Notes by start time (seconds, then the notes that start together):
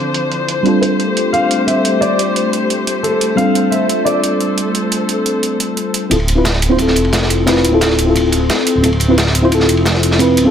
Already playing: D3 F3 C4 D4 E4 F4 A4 C5
0.14 closed hi-hat
0.32 closed hi-hat
0.48 closed hi-hat
0.63 G3 A3 C4 D4 F4 G4, closed hi-hat
0.68 A4
0.81 C5, closed hi-hat
1.00 closed hi-hat
1.17 closed hi-hat
1.33 F5, closed hi-hat
1.51 closed hi-hat
1.67 E5, closed hi-hat
1.85 closed hi-hat
2.01 D5, closed hi-hat
2.19 closed hi-hat
2.36 closed hi-hat
2.53 closed hi-hat
2.70 closed hi-hat
2.87 closed hi-hat
3.03 A4, closed hi-hat
3.21 closed hi-hat
3.36 G3 C4 D4 A4 F5, closed hi-hat
3.40 F4 A4
3.55 closed hi-hat
3.71 E5, closed hi-hat
3.89 closed hi-hat
4.05 D5, closed hi-hat
4.24 closed hi-hat
4.41 closed hi-hat
4.58 closed hi-hat
4.75 closed hi-hat
4.92 closed hi-hat
5.09 closed hi-hat
5.26 closed hi-hat
5.43 closed hi-hat
5.60 closed hi-hat
5.77 closed hi-hat
5.94 closed hi-hat
6.10 D1 C4 E4 F4 A4, kick, closed hi-hat, ride
6.20 ride
6.28 closed hi-hat, ride
6.35 C4 E4 F4 B4
6.45 kick, snare, closed hi-hat, ride
6.53 snare
6.62 closed hi-hat, ride
6.69 C4 E4 F4 C5
6.77 C4 E4 F4, kick, closed hi-hat, ride
6.82 A4
6.87 snare
6.96 F1, closed hi-hat, ride
7.05 ride
7.12 kick, snare, closed hi-hat, ride
7.22 snare
7.30 closed hi-hat, ride
7.46 C4 E4 F4 B4, kick, snare, closed hi-hat, ride
7.56 snare
7.64 D1, closed hi-hat, ride
7.72 C4 E4 F4 A4
7.81 kick, snare, closed hi-hat, ride
7.90 snare
7.99 closed hi-hat, ride
8.05 C4 E4 F4
8.10 A4
8.16 kick, closed hi-hat, ride
8.32 closed hi-hat, ride
8.49 kick, snare, closed hi-hat, ride
8.58 snare
8.67 closed hi-hat, ride
8.75 D1
8.82 D1 C4 E4 F4 A4, kick, closed hi-hat, ride
8.93 ride
9.00 closed hi-hat, ride
9.08 C4 E4 F4 B4
9.18 kick, snare, closed hi-hat, ride
9.26 snare
9.35 closed hi-hat, ride
9.42 C4 E4 F4 C5
9.49 C4 F4, kick, closed hi-hat, ride
9.54 A4
9.60 snare
9.69 F1, closed hi-hat, ride
9.77 ride
9.85 kick, snare, closed hi-hat, ride
9.94 snare
10.03 closed hi-hat, ride
10.11 snare
10.19 C4 E4 F4 B4, kick, closed hi-hat, ride
10.37 D1, closed hi-hat, ride
10.45 C4 E4 F4 A4